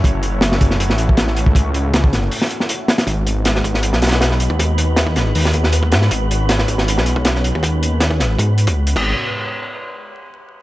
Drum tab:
CC |--------------------------------|--------------------------------|--------------------------------|--------------------------------|
HH |x---x---x---x---x---x---x---x---|x---x---x---x---o---x---x---x-x-|x---x---x---x---x---xxx-x---x---|x---x---x---x---o---x---x---x---|
SD |--------o-o---o---o-----o-o-----|--------o---o-----o---o-----o-o-|--------o-o---o---o-ooo-o-o-----|--------o---o-----o---o-----o-o-|
BD |o-----------o---------o-------o-|o---------o---------------------|o-----------o-----------------o-|o---------o---------o-----o-----|

CC |--------------------------------|----------------------------x---|--------------------------------|
HH |x---x---x---x---x---x---x---x---|x---x---x---x---x---x-x---x-----|--------------------------------|
SD |--------o-o---o---o-----o-o-----|--------o---o-------------------|--------------------------------|
BD |o-----------o---------o-------o-|o---------o-----o-----o-----o---|--------------------------------|